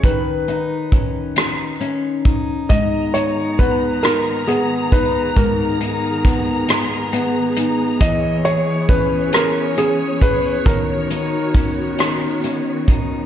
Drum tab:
HH |xxxxxx|xxxxxx|xxxxxx|xxxxxx|
SD |---r--|---r--|--rr--|---r--|
BD |o-o--o|o-o--o|o-o---|o-o--o|

HH |xxxxxx|
SD |---r--|
BD |o-o--o|